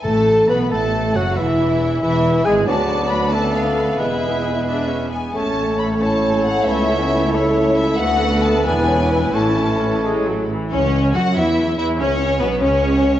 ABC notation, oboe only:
X:1
M:6/8
L:1/8
Q:3/8=91
K:A
V:1 name="Oboe"
a2 b a2 f | e3 e2 g | d3 A3 | B4- B z |
c3 c3 | c3 e3- | e3 B3 | c4- c z |
z6 | z6 |]